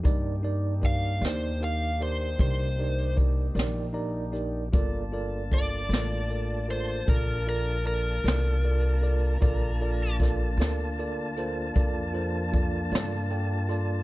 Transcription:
<<
  \new Staff \with { instrumentName = "Electric slide guitar" } { \time 12/8 \key g \minor \tempo 4. = 51 r4 f''8 c''8 f''8 c''8 c''4 r2 | r4 d''4. c''8 bes'8 bes'8 bes'2~ | bes'4 r1 r4 | }
  \new Staff \with { instrumentName = "Tine electric piano" } { \time 12/8 \key g \minor <ees' g' bes' d''>8 <ees' g' bes' d''>8 <ees' g' bes' d''>8 <ees' g' bes' d''>8 <ees' g' bes' f''>8 <ees' g' bes' d''>8 <ees' g' bes' d''>8 <ees' g' bes' d''>8 <ees' g' bes' d''>8 <ees' g' bes' d''>8 <ees' g' bes' d'' bes''>8 <ees' g' bes' d''>8 | <f' a' bes' d''>8 <f' a' bes' d''>8 <f' a' bes' d''>8 <f' a' bes' d''>8 <f' a' bes' d''>8 <f' a' bes' d''>8 <f' a' bes' d''>8 <f' a' bes' d''>8 <f' a' bes' d''>8 <f' a' bes' d''>8 <f' a' bes' d''>8 <f' a' bes' d''>8 | <f' a' bes' d''>8 <f' a' bes' d''>8 <f' a' bes' d''>8 <f' a' bes' d''>8 <f' a' bes' d''>8 <f' a' bes' c''>8 <f' a' bes' d''>8 <f' a' bes' c''>8 <f' a' bes' d''>8 <f' a' bes' d''>8 <f' a' bes' d'' g''>8 <f' a' bes' d'' c'''>8 | }
  \new Staff \with { instrumentName = "Tonewheel organ" } { \time 12/8 \key g \minor <bes d' ees' g'>1. | <bes d' f' a''>1. | <bes d' f' a''>1. | }
  \new Staff \with { instrumentName = "Upright bass" } { \clef bass \time 12/8 \key g \minor g,4. ees,4. c,4. bes,,4. | g,,4. a,,4. bes,,4. c,4. | bes,,4. d,4. f,4. g,4. | }
  \new DrumStaff \with { instrumentName = "Drums" } \drummode { \time 12/8 <hh bd>4 <hh bd>8 <hh sn>4 hh8 <hh bd>4 <hh bd>8 <hh sn>4 hh8 | <hh bd>4 <hh bd>8 <hh sn>4 hh8 <hh bd>4 hh8 <hh sn>4 hh8 | <hh bd>4 <hh bd sn>8 <hh sn>4 hh8 <hh bd>4 <hh bd>8 <hh sn>4 hh8 | }
>>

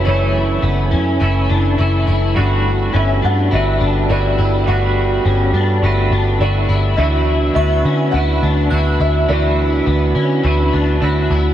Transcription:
<<
  \new Staff \with { instrumentName = "Synth bell" } { \time 4/4 \key d \major \tempo 4 = 104 r1 | r1 | r1 | r4 cis'''4 r4 fis'''4 |
r1 | }
  \new Staff \with { instrumentName = "Felt piano" } { \time 4/4 \key d \major cis''4 r2. | r4 e''8 fis''8 e''4 d''4 | fis''4 r2 d''4 | e''4 e''4 fis''4. e''8 |
d''4. r2 r8 | }
  \new Staff \with { instrumentName = "Clean electric guitar" } { \time 4/4 \key d \major e'4 b8 cis'8 e'8 d'8 e'8 e'8 | fis'4 cis'8 d'8 e'8 d'8 e'8 e'8 | fis'4 cis'8 d'8 e'8 d'8 e'8 e'8 | e'4 b8 cis'8 e'8 d'8 e'8 e'8 |
e'4 b8 cis'8 e'8 d'8 e'8 e'8 | }
  \new Staff \with { instrumentName = "Clean electric guitar" } { \time 4/4 \key d \major <fis, cis e a cis' a'>2 <e a cis' a'>4 <e a cis' a'>4 | <g a d' fis' b'>4 <a d' fis' b'>4 <a d' fis' b'>4 <a d' fis' b'>4 | <g a d' fis' b'>2 <a d' fis' b'>4 <a d' fis' b'>4 | <d e a d' fis' b'>4 <a d' fis' b'>4 <a d' fis' b'>4 <a d' fis' b'>4 |
<d e a d' fis' b'>2 <a d' fis' b'>4 <a d' fis' b'>4 | }
  \new Staff \with { instrumentName = "French horn section" } { \time 4/4 \key d \major << { <e cis' e'>1 | <g b fis'>1~ | <g b fis'>1 | <e d' fis'>1~ |
<e d' fis'>1 | } \\ { a1~ | a1~ | a1 | b1~ |
b1 | } >> }
  \new Staff \with { instrumentName = "Picked electric bass" } { \clef bass \time 4/4 \key d \major fis,,4 fis,,8 fis,8 fis,,8 fis,,8 fis,,8 fis,,8 | g,,4 g,,8 g,8 g,,8 g,,8 g,,8 g,,8 | g,,4 g,,8 g,8 g,,8 g,,8 g,,8 g,,8 | d,4 d,8 d8 d,8 d,8 d,8 d,8 |
d,4 d,8 d8 d,8 d,8 d,8 d,8 | }
>>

